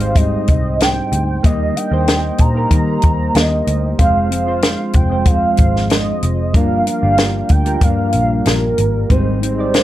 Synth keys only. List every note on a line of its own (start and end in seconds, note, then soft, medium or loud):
0.00 1.46 G#3 medium
0.00 1.44 D#4 medium
0.00 1.45 G4 medium
0.00 0.02 C5 medium
0.00 0.83 C5 medium
1.43 1.74 A#3 medium
1.43 1.75 D#4 medium
1.43 1.75 G4 medium
1.43 1.76 D#5 medium
1.91 2.33 A#3 medium
1.91 2.33 D#4 medium
1.91 2.33 G4 medium
1.91 2.34 C5 medium
2.55 3.37 A#3 medium
2.55 3.38 D#4 medium
2.55 3.38 G4 medium
2.55 3.39 A#4 medium
3.98 4.30 G#3 medium
3.98 4.30 C4 medium
3.98 4.30 F4 medium
3.98 4.31 C5 medium
4.46 4.88 G#3 medium
4.46 4.88 C4 medium
4.46 4.88 F4 medium
4.46 4.89 C5 medium
5.10 5.93 G#3 medium
5.10 5.93 C4 medium
5.10 5.93 F4 medium
5.10 5.94 C5 medium
6.53 6.85 G3 medium
6.53 6.85 D4 medium
6.53 6.86 F4 medium
6.53 6.86 A#4 medium
7.02 7.43 G3 medium
7.02 7.44 D4 medium
7.02 7.44 F4 medium
7.02 7.45 G4 medium
7.65 8.48 G3 medium
7.65 8.48 D4 medium
7.65 8.49 F4 medium
7.65 8.49 A#4 medium
9.09 9.40 G#3 medium
9.09 9.41 D#4 medium
9.09 9.41 G4 medium
9.09 9.42 C5 medium
9.58 9.83 G#3 medium
9.58 9.83 D#4 medium
9.58 9.83 G4 medium
9.58 9.83 D5 medium